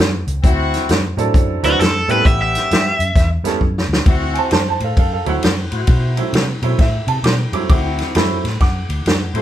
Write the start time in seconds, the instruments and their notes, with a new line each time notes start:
0.00 fingered electric bass F#2, snare
0.27 fingered electric bass C#2, closed hi-hat
0.42 fingered electric bass D2, horn section C4 E4 F#4, kick, closed hi-hat
0.74 snare, closed hi-hat
0.89 fingered electric bass F#2, snare, closed hi-hat
1.17 fingered electric bass A2, upright piano F#3 C4 D4 E4 A4, closed hi-hat
1.34 fingered electric bass F#2, kick, closed hi-hat
1.63 fingered electric bass D2, upright piano F#3 C4 D4 E4 B4, overdriven electric guitar F#4, snare, closed hi-hat
1.79 fingered electric bass F#2, overdriven electric guitar A4, snare, closed hi-hat
2.08 fingered electric bass A2, upright piano G3 B3 C#4 E4 A4, horn section C4 E4 A4, overdriven electric guitar B4, closed hi-hat
2.24 fingered electric bass A1, horn section B3 C#4 G4, overdriven electric guitar E5, kick, closed hi-hat
2.42 overdriven electric guitar E5
2.55 snare, closed hi-hat
2.71 fingered electric bass G2, snare, closed hi-hat
2.99 fingered electric bass F#2, closed hi-hat
3.16 fingered electric bass E2, kick, snare, closed hi-hat
3.44 fingered electric bass G2, upright piano G3 B3 C#4 E4 A4, snare, closed hi-hat
3.61 fingered electric bass F#2, kick
3.78 snare
3.88 fingered electric bass D2
3.93 snare
4.06 fingered electric bass D2, horn section C4 E4 F#4, kick, ride
4.34 upright piano C5 G#5, ride
4.38 upright piano A5
4.51 fingered electric bass F#2, upright piano C5 A5, snare, ride
4.69 upright piano C5 A5
4.80 fingered electric bass A2, upright piano A4, ride
4.84 upright piano F5
4.97 fingered electric bass F#2, upright piano A4 F5, kick, ride
5.13 upright piano A4 F5
5.25 fingered electric bass D2, upright piano F#3 A3 C4 E4, ride
5.29 upright piano F#5
5.43 fingered electric bass F#2, snare, ride
5.71 fingered electric bass A2, horn section E4 F#4 C5, ride
5.87 fingered electric bass B2, kick, ride
6.17 upright piano F#3 A3 C4 E4, ride
6.33 fingered electric bass C3, snare, ride
6.62 fingered electric bass B2, upright piano F#3 A3 C4 E4, ride
6.78 fingered electric bass A2, upright piano E5, kick, snare, ride
7.07 fingered electric bass C3, upright piano A5, ride
7.23 fingered electric bass B2, upright piano D6, snare, ride
7.52 fingered electric bass G2, upright piano F#3 A3 C4 E4 D6, ride
7.69 fingered electric bass D2, horn section C4 E4 F#4, upright piano D6, kick, ride
7.99 snare, ride
8.15 fingered electric bass F#2, upright piano F#3 A3 C4 E4 B5, snare, ride
8.44 fingered electric bass A2, snare, ride
8.60 fingered electric bass F#2, upright piano F#5 D6, kick, snare, ride
8.89 fingered electric bass D2, ride
9.06 fingered electric bass F#2, snare, ride
9.34 fingered electric bass A2, upright piano F#3 A3 C4 F#4, horn section E4 A4 C5, ride